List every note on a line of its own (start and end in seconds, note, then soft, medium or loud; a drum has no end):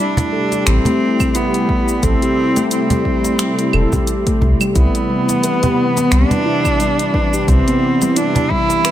0.00 8.91 C3 medium
0.00 0.31 G3 medium
0.00 4.72 G3 medium
0.00 4.72 A3 medium
0.00 0.69 D4 medium
0.00 4.72 E4 medium
0.00 4.72 G4 medium
0.17 cajon bass medium
0.17 cajon slap medium
0.17 closed hi-hat soft
0.17 shaker soft
0.33 0.50 A4 medium
0.52 0.84 G4 medium
0.52 cajon slap medium
0.52 closed hi-hat soft
0.52 shaker medium
0.67 0.80 A1 medium
0.67 1.37 C4 loud
0.67 finger snap medium
0.67 closed hi-hat medium
0.67 shaker medium
0.85 1.00 A3 medium
0.85 cajon bass medium
0.85 closed hi-hat soft
0.85 shaker soft
1.20 1.33 G3 medium
1.20 kick medium
1.20 cajon slap medium
1.20 claves medium
1.20 shaker medium
1.35 2.05 B3 medium
1.35 1.46 E4 medium
1.35 closed hi-hat medium
1.35 shaker medium
1.54 closed hi-hat soft
1.54 shaker soft
1.69 2.02 G3 medium
1.69 kick medium
1.88 shaker medium
2.03 2.16 A1 medium
2.03 2.70 C4 medium
2.03 2.21 A4 medium
2.03 kick loud
2.03 closed hi-hat medium
2.03 shaker medium
2.22 2.55 G4 medium
2.22 closed hi-hat soft
2.22 shaker soft
2.56 2.71 A3 loud
2.56 cajon slap medium
2.56 closed hi-hat soft
2.56 shaker medium
2.71 4.38 C4 medium
2.71 closed hi-hat medium
2.71 shaker medium
2.90 3.04 G3 medium
2.90 cajon bass medium
2.90 cajon slap medium
2.90 closed hi-hat soft
2.90 shaker soft
3.05 3.16 E4 medium
3.05 kick medium
3.25 cajon slap medium
3.25 closed hi-hat soft
3.25 shaker medium
3.39 3.72 G3 medium
3.39 finger snap medium
3.39 closed hi-hat medium
3.39 shaker medium
3.59 closed hi-hat soft
3.59 shaker soft
3.73 3.86 E1 medium
3.73 3.91 A4 medium
3.73 claves medium
3.93 4.25 G4 medium
3.93 kick loud
3.93 cajon bass medium
3.93 shaker medium
4.07 closed hi-hat medium
4.07 shaker medium
4.27 4.41 A3 medium
4.27 kick loud
4.27 closed hi-hat soft
4.27 shaker soft
4.42 4.54 C2 loud
4.42 kick medium
4.42 cajon slap medium
4.61 4.74 G3 loud
4.61 claves medium
4.61 shaker medium
4.76 4.88 C2 medium
4.76 8.91 E3 medium
4.76 8.91 G3 medium
4.76 6.14 B3 medium
4.76 7.46 B3 medium
4.76 4.87 E4 medium
4.76 8.91 E4 medium
4.76 kick loud
4.76 closed hi-hat medium
4.76 shaker soft
4.95 closed hi-hat soft
4.95 shaker soft
5.10 5.42 G3 medium
5.29 cajon slap medium
5.29 closed hi-hat soft
5.29 shaker medium
5.44 5.61 B4 medium
5.44 closed hi-hat medium
5.44 shaker medium
5.63 5.95 G4 medium
5.63 cajon bass medium
5.63 cajon slap medium
5.63 closed hi-hat soft
5.63 shaker soft
5.97 6.11 B3 loud
5.97 cajon slap medium
5.97 closed hi-hat soft
5.97 shaker medium
6.12 6.25 C2 medium
6.12 7.50 D4 loud
6.12 finger snap medium
6.12 closed hi-hat medium
6.12 shaker medium
6.31 6.45 G3 medium
6.31 cajon bass medium
6.31 closed hi-hat soft
6.31 shaker soft
6.46 6.57 E4 loud
6.65 kick loud
6.65 cajon slap medium
6.65 claves medium
6.65 shaker medium
6.80 7.13 G3 medium
6.80 closed hi-hat medium
6.80 shaker medium
6.99 closed hi-hat soft
6.99 shaker soft
7.14 7.32 B4 medium
7.14 kick loud
7.33 7.66 G4 medium
7.33 shaker medium
7.48 7.61 C2 medium
7.48 8.18 C4 medium
7.48 kick loud
7.48 closed hi-hat medium
7.48 shaker soft
7.68 7.82 B3 medium
7.68 closed hi-hat soft
7.68 shaker soft
8.02 8.15 G3 loud
8.02 cajon slap medium
8.02 closed hi-hat soft
8.02 shaker medium
8.16 8.52 D4 medium
8.16 8.28 E4 medium
8.16 closed hi-hat medium
8.16 shaker medium
8.35 cajon bass medium
8.35 cajon slap medium
8.35 closed hi-hat soft
8.35 shaker soft
8.50 8.83 G3 medium
8.50 8.91 E4 loud
8.50 kick medium
8.70 cajon slap medium
8.70 closed hi-hat soft
8.70 shaker medium
8.85 8.91 B4 medium
8.85 finger snap medium
8.85 closed hi-hat medium
8.85 shaker medium